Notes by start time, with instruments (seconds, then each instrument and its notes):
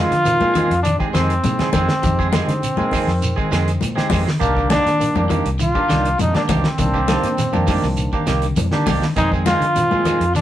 Already playing: clean electric guitar D#3 G#3 C4 G#4, trombone F4
0.11 fingered electric bass D3, clean electric guitar F3, snare, closed hi-hat, shekere
0.24 tine electric piano G#3 C4 D#4 A#4, closed hi-hat, high conga, low conga, shekere
0.41 fingered electric bass A#2, clean electric guitar G#3 C4 G#4, high conga, shekere
0.55 clean electric guitar D#3 F3 G#3 C4 G#4, closed hi-hat, low conga, shekere
0.70 fingered electric bass F2, closed hi-hat, shekere
0.83 clean electric guitar D#3, trombone D4, closed hi-hat, high conga, shekere
0.99 tine electric piano G#3 C4 D#4 G4, clean electric guitar G#3 C4 G#4, kick, shekere
1.13 fingered electric bass F2, clean electric guitar D#3 G#3 C4 G#4, tine electric piano G#3 C4 D#4 G4, trombone C4, snare, closed hi-hat, shekere
1.30 closed hi-hat, shekere
1.43 fingered electric bass A#2, clean electric guitar C3, tine electric piano G#3 C4 D#4 G#4, closed hi-hat, high conga, shekere
1.59 clean electric guitar G#3 C4 G#4, muted fingered electric bass stroke, snare, high conga, shekere
1.73 fingered electric bass F2, clean electric guitar D#3 G#3 C4 G#4, trombone C4, kick, closed hi-hat, high conga, low conga, shekere
1.89 snare, shekere
2.02 fingered electric bass F2, clean electric guitar D#3, tine electric piano G#3 C4 D#4 G4, kick, snare, closed hi-hat, high conga, shekere
2.19 clean electric guitar G#3 C4 G#4, kick, shekere
2.31 clean electric guitar D#3 F3 G#3 C4 G#4, tine electric piano G#3 C4 D#4 G4, trombone C4, snare, closed hi-hat, high conga, shekere
2.48 fingered electric bass D3, snare, closed hi-hat, shekere
2.62 closed hi-hat, high conga, shekere
2.77 fingered electric bass A#2, tine electric piano G#3 C4 D#4 A#4, clean electric guitar G#3 C4 G#4, muted clean electric guitar stroke, high conga, shekere
2.91 clean electric guitar D#3 G#3 C4 G#4, kick, open hi-hat, low conga, shekere
3.07 fingered electric bass F2, clean electric guitar F3, snare, shekere
3.21 closed hi-hat, high conga, shekere
3.36 clean electric guitar D#3 G#3 C4 G#4, kick, shekere
3.51 fingered electric bass F2, clean electric guitar D#3 G#3 C4 G#4, snare, closed hi-hat, shekere
3.66 clean electric guitar D3, closed hi-hat, shekere
3.81 fingered electric bass A#2, closed hi-hat, high conga, shekere
3.96 clean electric guitar D3 G#3 C4 G#4, tine electric piano G#3 C4 D#4 G4, muted fingered electric bass stroke, snare, shekere
4.09 fingered electric bass F2, clean electric guitar D#3 G#3 C4 G#4, kick, snare, open hi-hat, high conga, low conga, shekere
4.26 clean electric guitar D#3, snare, shekere
4.39 fingered electric bass C2, clean electric guitar D#3 A#3 D4 G4, tine electric piano D#3 G3 A#3 D4, trombone A#3, kick, closed hi-hat, high conga, shekere
4.55 clean electric guitar D3 A#3 D4 G4, kick, shekere
4.69 clean electric guitar D#3 A#3 D4 G4, trombone D4, snare, closed hi-hat, high conga, shekere
4.86 fingered electric bass A#2, clean electric guitar D#3, snare, closed hi-hat, shekere
4.99 tine electric piano D#3 G3 A#3 D4, closed hi-hat, high conga, shekere
5.15 fingered electric bass F2, clean electric guitar A#3 D4 G4, high conga, shekere
5.29 clean electric guitar D#3 F3 A#3 D4 G4, closed hi-hat, high conga, low conga, shekere
5.45 fingered electric bass C2, closed hi-hat, shekere
5.59 clean electric guitar D#3, trombone F4, closed hi-hat, high conga, shekere
5.74 tine electric piano D#3 G3 A#3 D4, clean electric guitar A#3 D4 G4, kick, shekere
5.88 fingered electric bass C2, tine electric piano D#3 G3 A#3 D4, clean electric guitar D#3 A#3 D4 G4, snare, closed hi-hat, low conga, shekere
6.05 closed hi-hat, shekere
6.18 fingered electric bass F2, clean electric guitar C3, tine electric piano D#3 G3 A#3 D4, trombone D#4, closed hi-hat, high conga, shekere
6.34 clean electric guitar A#3 D4 G4, trombone D4, muted fingered electric bass stroke, snare, high conga, shekere
6.49 fingered electric bass C2, clean electric guitar D#3 A#3 D4 G4, trombone C4, kick, closed hi-hat, high conga, low conga, shekere
6.64 snare, shekere
6.78 fingered electric bass C2, tine electric piano D#3 G3 A#3 D4, clean electric guitar D#3, kick, snare, closed hi-hat, high conga, shekere
6.93 clean electric guitar A#3 D4 G4, kick, shekere
7.08 tine electric piano D#3 G3 A#3 D4, clean electric guitar D#3 F3 A#3 D4 G4, snare, closed hi-hat, high conga, shekere
7.23 fingered electric bass A#2, snare, closed hi-hat, shekere
7.38 snare, closed hi-hat, high conga, low conga, shekere
7.51 fingered electric bass F2, tine electric piano D#3 G3 A#3 D4, clean electric guitar D#3 A#3 D4 G4, high conga, shekere
7.67 clean electric guitar D#3 A#3 D4 G4, kick, open hi-hat, high conga, low conga, shekere
7.82 fingered electric bass C2, clean electric guitar F3, snare, shekere
7.97 closed hi-hat, high conga, shekere
8.12 clean electric guitar D#3 A#3 D4 G4, kick, shekere
8.27 fingered electric bass C2, clean electric guitar D#3 A#3 G4, snare, closed hi-hat, low conga, shekere
8.42 clean electric guitar D3, closed hi-hat, shekere
8.56 fingered electric bass F2, closed hi-hat, high conga, shekere
8.71 clean electric guitar D3 A#3 D4 G4, tine electric piano D#3 G3 A#3 D4, muted fingered electric bass stroke, snare, shekere
8.86 fingered electric bass C2, clean electric guitar D#3 A#3 D4 G4, kick, open hi-hat, high conga, low conga, shekere
9.02 clean electric guitar D#3, snare, shekere
9.16 fingered electric bass F2, tine electric piano D#3 G3 G#3 C4, clean electric guitar D#3 G#3 C4 G#4, trombone D#4, kick, closed hi-hat, high conga, shekere
9.32 clean electric guitar G#3 C4 G#4, kick, shekere
9.46 clean electric guitar D#3 G#3 C4 G#4, trombone F4, snare, closed hi-hat, high conga, shekere
9.61 fingered electric bass D3, clean electric guitar F3, closed hi-hat, shekere
9.75 tine electric piano D#3 G3 G#3 C4, closed hi-hat, high conga, low conga, shekere
9.91 fingered electric bass A#2, clean electric guitar G#3 C4 G#4, high conga, shekere
10.05 clean electric guitar D#3 F3 G#3 C4 G#4, closed hi-hat, low conga, shekere
10.20 fingered electric bass F2, closed hi-hat, shekere
10.35 clean electric guitar D#3, trombone D4, snare, closed hi-hat, high conga, shekere